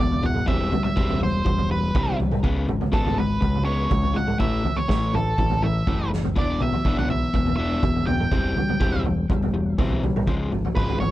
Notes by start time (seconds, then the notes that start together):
Already playing: D5
0.00 E1 E3 B3
0.11 floor tom
0.23 E3 B3 F#5, floor tom
0.34 mid tom
0.46 E1 E3 G3 C4 E5, kick, floor tom
0.72 E3 G3, floor tom
0.84 E5, floor tom
0.96 E1 E3 G3 C4, kick
1.09 floor tom
1.21 E3 G3 C5, floor tom
1.45 E1 E3 G3, kick, floor tom
1.58 floor tom
1.71 E3 G3 B4
1.95 C2 E3 G3 C4, kick, floor tom
2.07 floor tom
2.19 E3 G3, floor tom
2.32 mid tom
2.43 C#2 C#3 G#3 B3, kick, floor tom
2.68 G#1 C#3 G#3, floor tom
2.81 floor tom
2.92 G#1 C#3 G#3 B3 A4, kick
3.06 floor tom
3.16 C#3 G#3 B4, floor tom
3.41 C#2 C#3 G#3, kick, floor tom
3.55 floor tom
3.65 C#3 G#3 B3 C#5
3.89 C#2 C#3 G#3, kick, floor tom
4.03 floor tom
4.14 C#3 G#3 F#5, floor tom
4.27 mid tom
4.39 A1 A2 E3 A3 E5, kick, floor tom
4.63 A2 E3, floor tom
4.76 C#5, floor tom
4.88 A1 A2 E3 A3, kick, snare
5.13 A2 E3 A4, floor tom, mid tom
5.38 A1 A2 E3, kick, floor tom
5.50 floor tom
5.62 A2 E3 E5, mid tom
5.87 F#1 A2 E3 A3, kick, floor tom
6.11 A2 E3, snare
6.24 floor tom
6.36 E1 E3 B3 D4 D5, kick, floor tom
6.60 B1 E3 B3 E5, floor tom
6.73 floor tom
6.85 B1 E3 B3 D4, kick
6.97 F#5, floor tom
7.09 E3 B3 E5, floor tom
7.33 E1 E3 B3, kick, floor tom
7.46 floor tom
7.57 E3 B3 D4 E5
7.83 E1 E3 B3, kick, floor tom
7.95 floor tom
8.07 E3 B3 G5, floor tom
8.20 mid tom
8.31 E1 E3 G3 C4, kick, floor tom
8.56 E3 G3, floor tom
8.69 floor tom
8.80 E1 E3 G3 C4, kick
8.93 floor tom
9.05 E3 G3, floor tom
9.30 E1 E3 G3, kick, floor tom
9.43 floor tom
9.54 E3 G3
9.78 B1 E3 G3 C4, kick, floor tom
9.90 floor tom
10.03 E3 G3, floor tom
10.16 mid tom
10.27 C#2 C#3 F3 G#3, kick, floor tom
10.51 G#1 C#3 F3, floor tom
10.65 floor tom
10.75 G#1 C#3 F3 G#3 B4, kick
10.89 floor tom
11.00 C#3 F3 C#5, floor tom